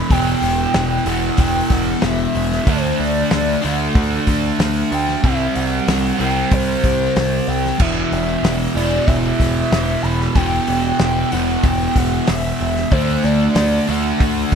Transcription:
Already playing: B5
0.09 E1 E2 B2 E3 G5, kick, open hi-hat
0.42 E1, open hi-hat
0.74 E1, snare, open hi-hat
1.05 E1 E2 B2 E3 F#5, open hi-hat
1.37 E1 G5, kick, open hi-hat
1.70 E1 F#5, kick, snare, open hi-hat
2.02 E1 E5, snare, open hi-hat
2.35 E1 E5, open hi-hat
2.51 snare
2.65 D2 D3 A3 D4 C5, kick, open hi-hat
3.00 D2 D5, open hi-hat
3.31 D2, snare, open hi-hat
3.62 D2 D3 A3 D4 F#5, open hi-hat
3.95 D2, kick, open hi-hat
4.27 D2, kick, snare, open hi-hat
4.59 D2, snare, open hi-hat
4.92 D2 G5, open hi-hat
5.08 snare
5.23 C2 C3 G3 C4 E5, kick, open hi-hat
5.55 C2 F#5, open hi-hat
5.88 C2, snare, open hi-hat
6.19 C2 C3 G3 C4 G5, open hi-hat
6.51 C2 C5, kick, open hi-hat
6.84 C2, kick, open hi-hat
7.16 C2, snare, open hi-hat
7.47 C2 G5, open hi-hat
7.65 snare
7.78 E1 E2 B2 E3 E5, kick, crash
8.12 E1, open hi-hat
8.43 E1, snare, open hi-hat
8.75 E1 E2 B2 E3 D5, open hi-hat
9.07 E1 E5, kick, open hi-hat
9.38 E1 E5, kick, snare, open hi-hat
9.72 E1, snare, open hi-hat
10.03 E1 B5, open hi-hat
10.20 snare
10.35 E1 E2 B2 E3 G5, kick, open hi-hat
10.67 E1, open hi-hat
10.99 E1, snare, open hi-hat
11.31 E1 E2 B2 E3 F#5, open hi-hat
11.63 E1 G5, kick, open hi-hat
11.96 E1 F#5, kick, snare, open hi-hat
12.27 E1 E5, snare, open hi-hat
12.59 E1 E5, open hi-hat
12.76 snare
12.91 D2 D3 A3 D4 C5, kick, open hi-hat
13.23 D2 D5, open hi-hat
13.55 D2, snare, open hi-hat
13.87 D2 D3 A3 D4 F#5, open hi-hat
14.20 D2, kick, open hi-hat
14.52 open hi-hat

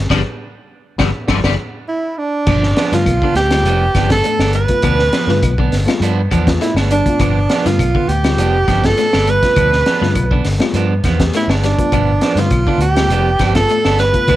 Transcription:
0.10 G1 D3 F3 G3 B3 D4, kick, snare, claves
0.98 G1 D3 F3 G3 B3 D4, kick, snare, claves
1.27 G1 D3 F3 G3 B3 D4, kick, snare, claves
1.44 G1 D3 F3 G3 B3 D4, kick, snare, claves
1.88 E4
2.18 D4
2.47 G1 B2 F3 D4, muted clean electric guitar stroke, kick, crash, claves
2.63 snare
2.76 F3 B3 D4, snare, closed hi-hat
2.92 G2 D3 A3 B3 F4, snare, closed hi-hat
2.96 F4
3.06 B1, kick, closed hi-hat, claves
3.22 D3 B3 D4, kick
3.35 D2 G4, snare, closed hi-hat
3.49 G3 A3 B3 F4, snare, closed hi-hat, claves
3.63 F1 F3 B3, closed hi-hat
3.67 D4
3.95 G1 F3 B3 D4, kick, snare, closed hi-hat, claves
4.09 A3 B3 D4 A4, kick, snare, closed hi-hat
4.24 A3, closed hi-hat
4.39 G1 B3 D4, snare, claves
4.53 G3 B4, closed hi-hat
4.58 B4
4.68 A3 B3 F4, kick, closed hi-hat
4.82 D2 B2 F3 B3 D4, kick, closed hi-hat, claves
4.99 snare
5.13 F3 B3, snare, closed hi-hat
5.27 G2 D3 A3 B3 F4, snare
5.42 B1, kick, closed hi-hat, claves
5.58 D3 B3 D4, kick
5.71 G1, snare, open hi-hat
5.86 G3 A3 B3 F4, snare, closed hi-hat, claves
6.00 G2 F3 B3 D4, closed hi-hat
6.31 E2 F3 B3 D4, kick, closed hi-hat, claves
6.46 A3 B3 F4, kick, snare, closed hi-hat
6.61 A3 E4, snare, closed hi-hat
6.74 G1 B3 D4, snare, claves
6.91 G3 D4, closed hi-hat
7.06 A3 B3 F4, kick, closed hi-hat
7.19 G1 B2 F3 B3 D4, kick, closed hi-hat, claves
7.49 F3 B3 D4, snare, closed hi-hat
7.65 G2 D3 A3 B3 F4, snare, closed hi-hat
7.78 B1, kick, closed hi-hat, claves
7.95 D3 B3, kick
8.08 D2 G4, closed hi-hat
8.24 G3 A3 B3 F4, snare, closed hi-hat, claves
8.37 F1 F3 B3 D4, closed hi-hat
8.68 G1 F3 B3 D4, kick, snare, closed hi-hat, claves
8.84 A3 B3 F4 A4, kick, snare, closed hi-hat
8.97 A3, snare, closed hi-hat
9.13 G1 B3 D4, snare, claves
9.27 G3 B4, closed hi-hat
9.43 A3 B3 F4, kick, snare, closed hi-hat
9.56 D2 B2 F3 D4, muted clean electric guitar stroke, kick, closed hi-hat, claves
9.72 snare
9.86 F3 B3 D4, snare, closed hi-hat
10.01 G2 D3 A3 B3 F4, snare
10.15 B1, kick, closed hi-hat, claves
10.31 D3 B3 D4, kick
10.45 G1, snare, open hi-hat
10.59 G3 A3 B3 F4, snare, closed hi-hat, claves
10.74 G2 F3 B3 D4, closed hi-hat
11.04 E2 F3 B3, kick, snare, closed hi-hat, claves
11.18 A3 B3 G4, kick, snare, closed hi-hat
11.33 A3 E4, snare, closed hi-hat
11.48 G1 B3 D4, snare, claves
11.64 G3 D4, snare, closed hi-hat
11.77 A3 B3 F4, kick, closed hi-hat
11.92 G1 B2 F3 B3 D4, kick, closed hi-hat, claves
12.21 F3 B3 D4, snare, closed hi-hat
12.35 G2 D3 A3 B3 F4, snare, closed hi-hat
12.40 F4
12.50 B1, kick, closed hi-hat, claves
12.67 D3 B3 D4, kick
12.78 D2 G4, closed hi-hat
12.86 G4
12.94 G3 A3 B3 F4, snare, closed hi-hat, claves
13.08 F1 F3 B3, closed hi-hat
13.12 D4
13.39 G1 F3 B3 D4, kick, snare, closed hi-hat, claves
13.54 A3 B3 F4 A4, kick, snare, closed hi-hat
13.60 A4
13.69 A3, closed hi-hat
13.85 G1 B3 D4, snare, claves
13.99 G3 B4, snare, closed hi-hat
14.12 A3 B3 F4, kick, closed hi-hat
14.28 D2 B2 F3 B3 D4, kick, closed hi-hat, claves

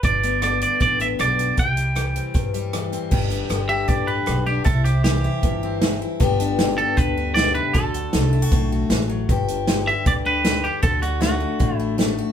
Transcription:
0.03 G1 G2 D5, kick, closed hi-hat
0.23 B3, closed hi-hat
0.42 D3 D5, cross-stick, closed hi-hat
0.61 D4 D5, closed hi-hat
0.80 A1 G2 D5, kick, closed hi-hat
1.00 B3 E5, closed hi-hat
1.19 B1 D3 D5, cross-stick, closed hi-hat
1.39 D4, closed hi-hat
1.57 C2 C3 G5, kick, closed hi-hat
1.77 G3, closed hi-hat
1.95 E3, cross-stick, closed hi-hat
2.16 C4, closed hi-hat
2.34 G2, kick, closed hi-hat
2.54 G3, closed hi-hat
2.73 E3, cross-stick, closed hi-hat
2.93 C4, closed hi-hat
3.11 G1 G2 G4, kick, crash
3.30 D4, closed hi-hat
3.50 G1 D3, cross-stick, closed hi-hat
3.69 G4 E5
3.88 A1 G2 D5, kick, closed hi-hat
4.07 D4 B4
4.26 B1 D3, cross-stick, closed hi-hat
4.46 D4 G4
4.64 C2 C3 E4 A4, kick, closed hi-hat
4.84 C4 G4, closed hi-hat
5.04 E3 G4, snare, closed hi-hat
5.24 E4
5.43 G1 G2, kick, closed hi-hat
5.63 C4
5.82 E3, snare, closed hi-hat
6.02 E4
6.20 G1 G2 D3 B3 D4 G4, kick, closed hi-hat
6.40 D4, closed hi-hat
6.59 D3, snare, closed hi-hat
6.78 G4 A4
6.97 D2 G2 B4, kick, closed hi-hat
7.17 D4
7.34 B2 D5, snare, closed hi-hat
7.55 C3 B4
7.73 D2 D3 F#4 A4, kick, closed hi-hat
7.94 F#4, closed hi-hat
8.13 C2 A3, snare, closed hi-hat
8.33 E4
8.42 F#4
8.52 B1 A2, kick, closed hi-hat
8.72 F#4
8.90 A1 E3, snare, closed hi-hat
9.10 F#3
9.29 G1 G2 G4, kick, closed hi-hat
9.48 D4, closed hi-hat
9.68 D3, snare, closed hi-hat
9.87 G4 E5
10.06 D2 G2 D5, kick, closed hi-hat
10.25 D4 B4
10.45 D3, snare, closed hi-hat
10.64 D4 G4
10.83 D2 D3 F#4 A4, kick, closed hi-hat
11.02 D4 F#4, closed hi-hat
11.21 A3 F#4, snare, closed hi-hat
11.40 D4
11.60 A1 A2, kick, closed hi-hat
11.76 D4 E4
11.98 A3, snare, closed hi-hat
12.19 F#4

